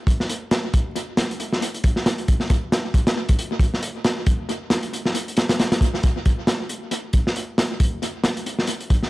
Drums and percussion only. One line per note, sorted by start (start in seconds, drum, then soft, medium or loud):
0.07 kick loud
0.07 closed hi-hat medium
0.20 snare soft
0.29 closed hi-hat medium
0.51 snare loud
0.51 closed hi-hat medium
0.74 kick loud
0.74 closed hi-hat medium
0.96 closed hi-hat medium
1.17 snare loud
1.17 closed hi-hat medium
1.31 closed hi-hat soft
1.40 closed hi-hat medium
1.53 snare medium
1.62 closed hi-hat medium
1.74 closed hi-hat soft
1.84 kick medium
1.84 closed hi-hat medium
1.96 snare soft
2.06 snare loud
2.06 closed hi-hat medium
2.18 closed hi-hat soft
2.28 kick loud
2.28 closed hi-hat medium
2.40 snare soft
2.50 kick loud
2.50 closed hi-hat medium
2.72 snare loud
2.72 closed hi-hat medium
2.94 kick loud
2.94 closed hi-hat medium
3.07 snare loud
3.07 closed hi-hat medium
3.29 kick medium
3.29 closed hi-hat medium
3.39 closed hi-hat medium
3.59 kick loud
3.59 closed hi-hat medium
3.74 snare soft
3.83 closed hi-hat medium
4.04 snare loud
4.04 closed hi-hat medium
4.26 kick loud
4.26 closed hi-hat loud
4.49 closed hi-hat medium
4.70 snare loud
4.70 closed hi-hat medium
4.83 closed hi-hat soft
4.93 closed hi-hat medium
5.06 snare medium
5.15 closed hi-hat medium
5.28 closed hi-hat soft
5.37 snare loud
5.37 closed hi-hat medium
5.49 snare loud
5.49 closed hi-hat medium
5.60 snare loud
5.60 closed hi-hat medium
5.72 snare loud
5.72 closed hi-hat medium
5.81 kick loud
5.81 closed hi-hat medium
5.94 snare soft
6.03 kick loud
6.03 closed hi-hat medium
6.25 kick loud
6.25 closed hi-hat medium
6.47 snare loud
6.47 closed hi-hat medium
6.69 closed hi-hat medium
6.91 closed hi-hat medium
7.13 kick medium
7.13 closed hi-hat medium
7.27 snare medium
7.36 closed hi-hat medium
7.58 snare loud
7.58 closed hi-hat medium
7.80 kick loud
7.80 closed hi-hat loud
8.02 closed hi-hat medium
8.24 snare loud
8.24 closed hi-hat medium
8.37 closed hi-hat soft
8.46 closed hi-hat medium
8.59 snare medium
8.67 closed hi-hat loud
8.80 closed hi-hat soft
8.90 kick medium
8.90 closed hi-hat medium
9.03 snare soft